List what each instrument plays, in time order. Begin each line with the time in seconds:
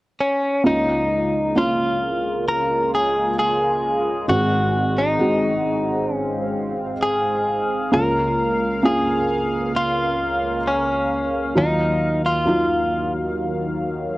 0.20 clean electric guitar C#4
0.64 felt piano C#2 C#3 A#3 C#4 F4, analog synth pad C#3 G#3 A#3 F4, clean electric guitar D#4
1.56 felt piano A#3 C#4 F4, clean electric guitar F4
2.48 clean electric guitar A#4
2.94 clean electric guitar G#4
3.39 clean electric guitar G#4
4.28 felt piano G#1 G#2 G#3 C4 F#4, analog synth pad G#2 C4 F#4, clean electric guitar F#4
4.98 clean electric guitar D#4
5.19 felt piano G#3 C4 F#4
6.12 clean electric guitar C#4, analog synth pad F5
7.03 clean electric guitar G#4
7.92 analog synth pad C#2 C#3 A#3, felt piano C#2 C#3 A#3 C#4 F4, clean electric guitar A#4
8.83 felt piano A#3 C#4 F4, clean electric guitar G#4
9.76 clean electric guitar F4
10.67 clean electric guitar C#4
11.55 analog synth pad D#2 D#3 F#3, felt piano D#2 D#3 F#3 D#4 F4, clean electric guitar D#4
12.26 clean electric guitar F4
12.46 felt piano F#3 D#4 F4